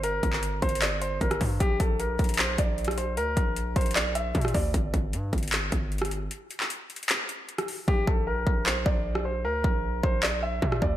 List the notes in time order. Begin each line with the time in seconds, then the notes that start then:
Already playing: G1
0.03 A#4, closed hi-hat
0.23 G1, kick, closed hi-hat
0.33 clap
0.43 closed hi-hat
0.62 G1 C5, kick, closed hi-hat
0.69 closed hi-hat
0.75 closed hi-hat
0.82 D5, clap, closed hi-hat
1.01 C5, closed hi-hat
1.21 G1 A#4, kick, closed hi-hat
1.31 cross-stick, closed hi-hat
1.41 G2, kick, open hi-hat
1.60 A#1 G4, kick, closed hi-hat
1.80 A#1 A4, kick, closed hi-hat
2.00 A#4, closed hi-hat
2.19 A#1, kick, closed hi-hat
2.24 closed hi-hat
2.29 closed hi-hat
2.34 closed hi-hat
2.39 C5, clap
2.58 A#1 D5, kick, closed hi-hat
2.78 closed hi-hat
2.85 cross-stick, closed hi-hat
2.91 closed hi-hat
2.98 C5, closed hi-hat
3.17 D2 A#4, closed hi-hat
3.37 A#1, kick, closed hi-hat
3.56 closed hi-hat
3.76 A#1 C5, kick, closed hi-hat
3.81 closed hi-hat
3.86 closed hi-hat
3.91 closed hi-hat
3.96 D5, clap, closed hi-hat
4.15 E5, closed hi-hat
4.35 A#2, kick, closed hi-hat
4.41 cross-stick, closed hi-hat
4.48 closed hi-hat
4.54 D2 D5, kick, open hi-hat
4.74 G1, kick, closed hi-hat
4.94 G1, kick, closed hi-hat
5.13 G2, closed hi-hat
5.33 G1, kick, closed hi-hat
5.38 closed hi-hat
5.43 closed hi-hat
5.48 closed hi-hat
5.53 clap, closed hi-hat
5.72 G1, kick, closed hi-hat
5.92 closed hi-hat
5.98 cross-stick, closed hi-hat
6.05 closed hi-hat
6.11 closed hi-hat
6.31 closed hi-hat
6.51 closed hi-hat
6.60 clap
6.70 closed hi-hat
6.90 closed hi-hat
6.96 closed hi-hat
7.03 closed hi-hat
7.09 clap, closed hi-hat
7.29 closed hi-hat
7.49 closed hi-hat
7.58 cross-stick, closed hi-hat
7.68 open hi-hat
7.88 A#1 G4, kick
8.07 A#1 A4, kick
8.27 A#4
8.47 A#1, kick
8.66 C5, clap
8.86 A#1 D5, kick
9.15 cross-stick
9.25 C5
9.45 D2 A#4
9.64 A#1, kick
10.03 A#1 C5, kick
10.23 D5, clap
10.43 E5
10.62 A#2, kick
10.72 cross-stick
10.82 D2 D5, kick